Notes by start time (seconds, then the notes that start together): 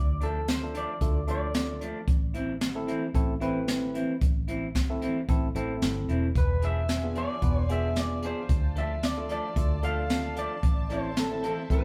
Already playing: D2 D5
0.21 F3 A3 D4 A4, closed hi-hat
0.48 C5, snare, closed hi-hat
0.63 A3 D4 F4 A4
0.74 F3 A3 D4 D5, closed hi-hat
1.01 D2 A3 D4 F4 A4, kick, closed hi-hat
1.27 F3 A3 D4 F4 A4 D5, closed hi-hat
1.54 snare, closed hi-hat
1.81 F3 A3 D4, closed hi-hat
2.08 A1, kick, closed hi-hat
2.34 E3 C4 E4, closed hi-hat
2.61 snare, closed hi-hat
2.75 A3 C4 E4 A4
2.87 E3 C4 E4, closed hi-hat
3.14 A1 A3 C4 E4 A4, kick, closed hi-hat
3.40 E3 A3 C4 E4 B4, closed hi-hat
3.68 snare, closed hi-hat
3.94 E3 C4 E4, closed hi-hat
4.21 A1, kick, closed hi-hat
4.48 E3 C4 E4, closed hi-hat
4.75 kick, snare, closed hi-hat
4.89 A3 C4 E4 A4
5.02 E3 C4 E4, closed hi-hat
5.29 A1 A3 C4 E4 A4, kick, closed hi-hat
5.55 A1 E3 A3 C4 E4 A4, closed hi-hat
5.82 G1, snare, closed hi-hat
6.09 E1 E3 C4 E4, closed hi-hat
6.35 E1 F4 B4 D5 G#5, kick, closed hi-hat
6.62 F3 B3 D4 G#4 E5, closed hi-hat
6.89 snare, closed hi-hat
7.03 B3 D4 F4 G#4
7.15 F3 B3 D4 G#4 D5, closed hi-hat
7.42 E1 B3 D4 F4 B4, kick, closed hi-hat
7.61 C5
7.69 F3 B3 D4 F4 G#4 E5, closed hi-hat
7.96 D5, snare, closed hi-hat
8.22 F3 B3 D4 G#4 C5, closed hi-hat
8.49 D2 D5 A5, kick, closed hi-hat
8.76 F3 A3 D4 A4 E5, closed hi-hat
9.03 D5, snare, closed hi-hat
9.17 A3 D4 F4 A4
9.29 F3 A3 D4 A4 D5, closed hi-hat
9.56 D2 A3 D4 F4 A4, kick, closed hi-hat
9.83 F3 A3 D4 F4 A4 F5, closed hi-hat
10.10 snare, closed hi-hat
10.36 F3 A3 D4 A4 D5, closed hi-hat
10.63 A1 C5 E5, kick, closed hi-hat
10.90 E3 C4 E4 A4 C5, closed hi-hat
11.16 A4, snare, closed hi-hat
11.31 A3 C4 E4 A4
11.43 E3 C4 E4 A4, closed hi-hat
11.70 A1 A3 C4 E4 A4 C5, kick, closed hi-hat